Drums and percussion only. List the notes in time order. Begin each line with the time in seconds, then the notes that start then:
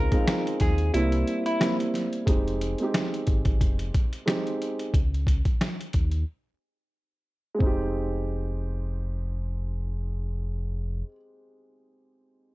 0.12 kick, closed hi-hat
0.28 snare, closed hi-hat
0.47 closed hi-hat
0.60 kick, snare, closed hi-hat
0.78 closed hi-hat
0.94 closed hi-hat
1.12 closed hi-hat
1.27 closed hi-hat
1.46 closed hi-hat
1.61 snare, closed hi-hat
1.80 closed hi-hat
1.94 snare, closed hi-hat
2.13 closed hi-hat
2.27 kick, closed hi-hat
2.48 closed hi-hat
2.61 closed hi-hat
2.78 closed hi-hat
2.94 snare, closed hi-hat
3.14 closed hi-hat
3.27 kick, closed hi-hat
3.45 kick, closed hi-hat
3.61 kick, closed hi-hat
3.79 closed hi-hat
3.94 kick, closed hi-hat
4.13 closed hi-hat
4.28 snare, closed hi-hat
4.47 closed hi-hat
4.62 closed hi-hat
4.79 closed hi-hat
4.94 kick, closed hi-hat
5.14 closed hi-hat
5.27 kick, closed hi-hat
5.45 kick, closed hi-hat
5.61 snare, closed hi-hat
5.81 closed hi-hat
5.93 kick, closed hi-hat
6.11 closed hi-hat
7.60 kick